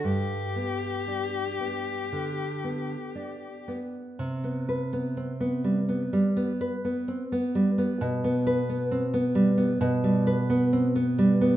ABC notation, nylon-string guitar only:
X:1
M:4/4
L:1/16
Q:1/4=63
K:G
V:1 name="Nylon-string guitar"
G,,2 B,2 D2 B,2 D,2 B,2 D2 B,2 | C, B, B B, C B, G, B, G, B, B B, C B, G, B, | B,, B, B B, C B, G, B, B,, G, B B, C B, G, B, |]